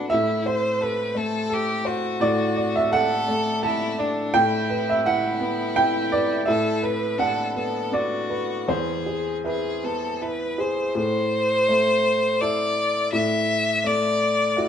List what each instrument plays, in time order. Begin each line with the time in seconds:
Already playing: upright piano B3 F#4 B4 F#5
0.10 upright piano A2 E5, violin E4
0.46 upright piano C5, violin C5
0.81 upright piano A4, violin B4
1.15 upright piano A3, violin A4
1.50 upright piano A4
1.54 violin G4
1.85 violin F#4, upright piano C5
2.20 upright piano A2 D5
2.56 upright piano D5
2.76 upright piano E5
2.91 upright piano A4 F#5, violin A4
3.28 upright piano A3
3.63 violin E4, upright piano A4 A5
3.98 violin D4, upright piano D5
4.34 upright piano A2 G5, violin E4
4.70 upright piano B4
4.90 upright piano E5
5.05 violin E4, upright piano E4 F#5
5.40 upright piano B3
5.76 upright piano E4 G5
6.12 upright piano B4 D5
6.46 upright piano A2 E5, violin A4
6.82 upright piano B4, violin B4
7.18 upright piano D4 F#5, violin A4
7.56 upright piano B3, violin A4
7.92 upright piano D4 D5, violin F#4
8.29 upright piano B4
8.68 upright piano E2 C5, violin G#4
9.06 upright piano G#4
9.44 upright piano E4 B4, violin G#4
9.84 upright piano B3, violin A4
10.21 upright piano E4, violin B4
10.58 upright piano G#4, violin C5
10.95 upright piano A2, violin C5
11.69 upright piano A3
12.41 upright piano E4 A4, violin D5
13.12 upright piano A2, violin E5
13.84 upright piano A3, violin D5
14.56 upright piano E4 F#4